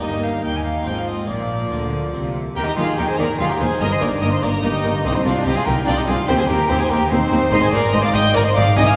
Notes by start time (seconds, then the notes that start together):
Already playing: A#3
0.00 G1 G2 A#3 D#4 G4 D#5
0.24 F5
0.44 D#2 A#3 D#4 G4 G5
0.56 G#5
0.66 F5
0.83 G#1 G#2 F3 C4 F4
0.87 G5
0.99 F5
1.08 D#5
1.26 A#1 A#2 F3 A#3 F4 D5
1.71 D2 D3
2.14 C2 C3
2.56 D#2 D#3 A#3 G4 A#4 G5
2.67 D#4 G4 D#5
2.77 D#2 D#3 A#3 F4 G4 G#4 F5
2.97 D#2 D#3 A#3 G4 A#4 G5
3.08 G#4 C5 G#5
3.18 D#2 D#3 A#3 D#4 A#4 D5 A#5
3.39 D#2 D#3 A#3 F4 G4 G#4 F5
3.50 G4 A#4 G5
3.60 D#2 D#3 A#3 D#4 G#4 C5 G#5
3.81 G1 G2 A#3 A#4 D#5 A#5
3.92 C5 D#5 C6
4.01 G1 G2 A#3 D#4 A#4 D5 A#5
4.22 G1 G2 A#3 A#4 D#5 A#5
4.32 C5 D#5 C6
4.42 G1 G2 A#3 A#4 D5 A#5
4.63 G1 G2 A#3 D#4 G4 D#5
4.83 G1 G2 A#3
5.04 C2 C4 D#4 G4 D#5
5.15 C4 D#4 C5
5.25 C2 C4 D4 F4 G4 D5
5.45 C2 C4 D#4 G4 D#5
5.56 F4 G#4 F5
5.65 C2 C4 D#4 G4 A#4 G5
5.86 C2 C4 D4 F4 G4 D5
5.97 D#4 G4 D#5
6.07 C2 C4 D#4 F4 G#4 F5
6.28 D#2 C4 G4 C5 G5
6.39 G#4 C5 G#5
6.48 D#2 C4 G4 A#4 G5
6.69 D#2 C4 G4 C5 G5
6.80 G#4 C5 G#5
6.90 D#2 C4 D#4 G4 A#4 G5
7.10 D#2 C4 D#4 G4 C5
7.32 D#2 C4 D#4
7.52 G#1 G#2 D#4 C5 D#5 C6
7.62 G#4 C5 G#5
7.73 G#1 G#2 D#4 A#4 D5 A#5
7.93 G#1 G#2 G#3 D#4 C5 D#5 C6
8.03 D5 F5 D6
8.13 G#1 G#2 C4 D#4 D#5 G5 D#6
8.34 G#1 G#2 D#4 A#4 D5 A#5
8.45 C5 D#5 C6
8.55 G#1 G#2 C4 D#4 D5 F5 D6
8.76 C2 C3 D#4 D#5 G#5 D#6
8.87 F5 G#5 F6